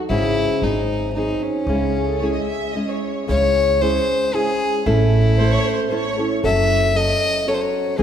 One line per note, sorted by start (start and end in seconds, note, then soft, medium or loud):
0.00 0.10 F#3 medium
0.00 0.11 F#4 medium
0.00 0.11 A4 medium
0.10 0.44 G#1 medium
0.10 0.62 G#2 medium
0.10 0.62 C#3 medium
0.10 0.62 G#3 medium
0.10 0.62 C#4 medium
0.10 0.65 E4 loud
0.10 0.63 E4 medium
0.10 0.64 G#4 medium
0.62 1.30 G#1 loud
0.62 1.15 F#3 soft
0.62 1.15 C4 medium
0.62 1.14 D#4 medium
0.62 1.15 D#4 medium
0.62 1.17 G#4 medium
1.15 1.68 F#3 medium
1.15 1.68 C4 medium
1.15 1.44 D#4 medium
1.15 1.68 D#4 medium
1.15 1.69 G#4 medium
1.43 2.75 C#4 medium
1.67 2.37 C#2 medium
1.67 2.21 C#3 medium
1.67 2.21 G#3 medium
1.67 2.21 C#4 medium
1.67 2.22 E4 medium
1.67 2.23 G#4 medium
1.95 2.07 G#4 medium
2.06 2.20 A4 medium
2.17 2.75 G#3 medium
2.17 2.33 C#5 medium
2.21 2.76 C#4 medium
2.21 2.75 E4 medium
2.21 2.76 G#4 medium
2.33 2.47 D#5 medium
2.46 2.71 E5 medium
2.73 3.27 G#3 medium
2.73 3.28 C#4 medium
2.73 3.29 E4 medium
2.73 2.88 D#5 medium
2.77 3.27 G#4 medium
2.88 3.28 C#5 medium
3.28 3.97 C#2 medium
3.28 3.81 C#3 medium
3.28 3.80 G#3 medium
3.28 3.81 C#4 medium
3.28 3.81 E4 medium
3.28 3.82 G#4 medium
3.28 3.83 C#5 loud
3.81 4.32 G#3 medium
3.81 4.33 C#4 soft
3.81 4.33 E4 medium
3.81 4.33 G#4 medium
3.81 4.37 C5 loud
4.33 4.86 G#3 medium
4.33 4.86 C#4 medium
4.33 4.86 E4 medium
4.33 4.87 G#4 medium
4.33 4.89 G#4 loud
4.86 5.55 A1 loud
4.86 5.39 A3 medium
4.86 5.40 C#4 medium
4.86 5.39 E4 medium
4.86 6.19 E4 medium
4.86 5.41 A4 medium
5.38 5.90 A3 medium
5.38 5.91 C#4 medium
5.38 5.91 E4 medium
5.38 5.92 A4 medium
5.38 5.51 C5 medium
5.52 5.66 C#5 loud
5.68 5.86 C5 loud
5.89 6.18 A3 medium
5.89 6.18 C#4 medium
5.89 6.18 E4 medium
5.89 6.17 A4 medium
5.89 5.93 C5 medium
5.93 6.32 C#5 medium
6.18 6.43 C#4 soft
6.18 6.44 E4 medium
6.18 6.42 A4 medium
6.43 7.11 F#1 loud
6.43 6.94 F#3 medium
6.43 6.94 C#4 medium
6.43 6.95 F#4 loud
6.43 6.95 A4 medium
6.43 6.98 E5 loud
6.95 7.45 F#3 medium
6.95 7.46 C#4 medium
6.95 7.46 F#4 medium
6.95 7.47 A4 medium
6.95 7.50 D#5 loud
7.46 7.98 F#3 medium
7.46 7.98 C#4 medium
7.46 7.98 F#4 medium
7.46 7.99 A4 medium
7.46 7.56 C#5 loud
7.54 7.63 C5 medium
7.61 8.00 C#5 medium
7.98 8.03 G#1 loud
7.98 8.03 G#2 medium
7.98 8.03 D#3 medium
7.98 8.03 G#3 medium
7.98 8.03 C4 medium
7.98 8.03 D#4 medium
7.98 8.03 G#4 loud
7.98 8.03 G#4 medium